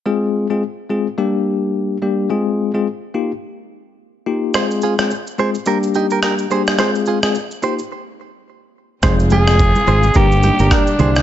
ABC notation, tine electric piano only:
X:1
M:4/4
L:1/16
Q:"Swing 16ths" 1/4=107
K:Fdor
V:1 name="Tine electric piano"
[A,CFA]3 [A,CFA] z2 [A,CFA] z [G,B,DG]6 [G,B,DG]2 | [A,CFA]3 [A,CFA] z2 [B,EFG] z6 z [B,EFG]2 | [A,CFA]3 [A,CFA] z2 [A,CFA] z [G,B,DG]6 [G,B,DG]2 | [A,CFA]3 [A,CFA] z2 [B,EFG] z8 z |
[A,CFA]3 [A,CFA] z2 [A,CFA] z [G,B,DG]6 [G,B,DG]2 |]